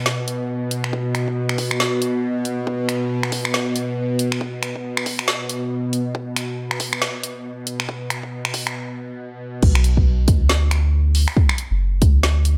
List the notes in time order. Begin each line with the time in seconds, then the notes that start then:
Already playing: B2
0.06 snare
0.28 closed hi-hat
0.71 closed hi-hat
0.84 finger snap
0.93 kick
1.15 finger snap, closed hi-hat
1.28 kick
1.49 finger snap
1.58 kick, open hi-hat
1.71 finger snap
1.80 snare
2.02 closed hi-hat
2.45 closed hi-hat
2.67 kick
2.89 finger snap, closed hi-hat
3.23 finger snap
3.32 kick, open hi-hat
3.45 finger snap
3.54 snare
3.76 closed hi-hat
4.19 closed hi-hat
4.32 finger snap
4.41 kick
4.63 finger snap, closed hi-hat
4.76 kick
4.97 finger snap
5.06 kick, open hi-hat
5.19 finger snap
5.28 snare
5.49 closed hi-hat
5.93 closed hi-hat
6.15 kick
6.36 finger snap, closed hi-hat
6.71 finger snap
6.80 kick, open hi-hat
6.93 finger snap
7.02 snare
7.23 closed hi-hat
7.67 closed hi-hat
7.80 finger snap
7.89 kick
8.10 finger snap, closed hi-hat
8.23 kick
8.45 finger snap
8.54 kick, open hi-hat
8.67 finger snap, closed hi-hat
9.63 B1, kick, crash
9.75 finger snap
9.84 closed hi-hat
9.97 kick
10.28 D2, kick, closed hi-hat
10.49 snare
10.71 finger snap, closed hi-hat
11.15 open hi-hat
11.28 finger snap
11.37 kick
11.49 finger snap
11.58 closed hi-hat
11.71 F#1
12.02 D2, kick, closed hi-hat
12.23 snare
12.45 closed hi-hat